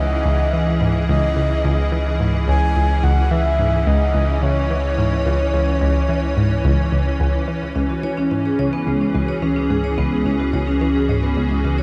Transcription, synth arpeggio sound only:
0.00 0.15 C#2 medium
0.25 0.43 C#2 loud
0.53 0.80 E3 medium
0.81 0.99 G#2 medium
1.09 1.20 C#2 loud
1.37 1.54 C#2 medium
1.64 1.82 C#2 loud
1.92 2.19 E3 medium
2.20 2.38 G#2 medium
2.48 2.58 C#2 loud
2.76 2.93 C#2 medium
3.04 3.21 C#2 loud
3.31 3.58 E3 medium
3.59 3.77 G#2 medium
3.87 3.97 C#2 loud
4.15 4.32 C#2 medium
4.42 4.60 C#2 loud
4.70 4.96 E3 medium
4.98 5.15 G#2 medium
5.26 5.36 C#2 loud
5.53 5.71 C#2 medium
5.81 5.99 C#2 loud
6.09 6.35 E3 medium
6.37 6.54 G#2 medium
6.64 6.75 C#2 medium
6.92 7.10 C#2 medium
7.20 7.38 C#2 loud
7.48 7.74 E3 medium
7.76 7.93 C#2 loud
8.03 8.30 E3 medium
8.31 8.49 G#2 medium
8.59 8.69 C#2 loud
8.87 9.04 C#2 medium
9.14 9.32 C#2 loud
9.42 9.69 E3 medium
9.70 9.88 G#2 medium
9.98 10.08 C#2 loud
10.26 10.43 C#2 medium
10.53 10.71 C#2 loud
10.81 11.07 E3 medium
11.09 11.26 G#2 medium
11.37 11.47 C#2 loud
11.64 11.82 C#2 medium

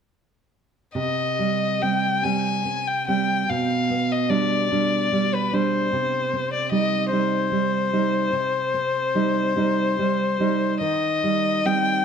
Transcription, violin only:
0.96 1.84 D#5 soft
1.82 2.25 G5 soft
2.24 2.89 G#5 soft
2.87 3.07 G5 soft
3.07 3.51 G5 soft
3.49 4.13 F5 soft
4.12 4.31 D#5 soft
4.30 5.36 D5 soft
5.34 5.55 B4 soft
5.54 6.52 C5 soft
6.53 6.71 D5 soft
6.72 7.10 D#5 soft
7.11 10.77 C5 medium
10.81 11.67 D#5 medium
11.66 12.05 G5 medium

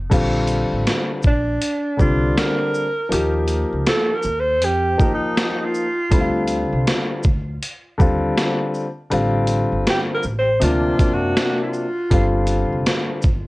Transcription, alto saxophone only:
1.27 1.96 D4 medium
2.01 2.40 F4 medium
2.39 3.50 A#4 loud
3.89 4.16 A4 medium
4.15 4.41 A#4 medium
4.40 4.66 C5 loud
4.65 5.13 G4 loud
5.14 5.66 D#4 medium
5.65 6.76 F4 medium
9.90 10.00 G4 medium
10.14 10.25 A#4 medium
10.38 10.65 C5 loud
10.64 11.15 F4 medium
11.13 11.62 F#4 medium
11.63 12.71 F4 medium

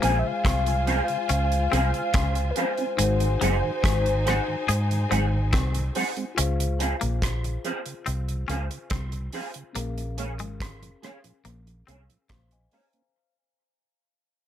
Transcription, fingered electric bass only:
0.04 0.22 A#1 medium
0.45 1.00 C2 loud
1.30 1.66 C#2 loud
1.73 1.91 C2 loud
2.15 2.51 C#2 medium
2.99 3.35 G#1 loud
3.42 3.60 F#1 medium
3.84 4.39 G#1 loud
4.69 5.05 G#2 loud
5.12 5.53 G#1 medium
5.53 5.89 C2 loud
6.39 6.93 C#2 medium
7.03 7.56 A#1 medium
8.08 8.43 C2 medium
8.49 8.68 C#2 medium
8.91 9.28 C2 medium
9.76 10.40 A#1 loud
10.40 10.94 G#1 medium
11.46 11.82 A#1 medium
11.88 12.06 C2 medium
12.30 12.66 A#1 medium

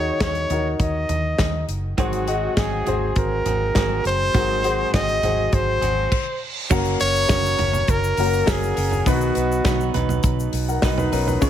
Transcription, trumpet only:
0.00 0.21 C#5 loud
0.22 0.77 C#5 medium
0.82 1.66 D#5 medium
1.99 2.54 F#4 medium
2.58 3.13 G#4 medium
3.18 4.02 A#4 medium
4.07 4.90 C5 loud
4.94 5.56 D#5 loud
5.54 6.42 C5 medium
7.01 7.92 C#5 loud
7.90 8.52 A#4 loud
8.50 9.10 G#4 medium
9.09 9.96 F#4 medium

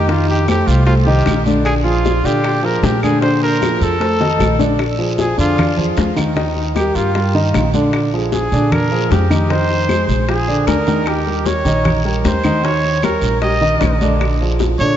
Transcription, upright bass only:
0.00 0.62 F2 medium
0.67 1.23 C2 medium
1.27 2.19 A#1 medium
2.24 2.79 A#2 medium
2.83 3.75 A#2 medium
3.81 4.36 F2 medium
4.39 5.32 A#1 medium
5.38 5.93 F2 medium
5.97 6.89 D#2 medium
6.95 7.50 G2 medium
7.54 8.46 A#1 medium
8.52 9.07 A#2 medium
9.11 10.03 F2 medium
10.08 10.63 A#1 medium
10.67 11.59 D#2 medium
11.65 12.20 A#1 medium
12.25 13.17 D#2 medium
13.22 13.77 A#1 medium
13.82 14.74 A#1 medium
14.79 14.97 A#2 medium

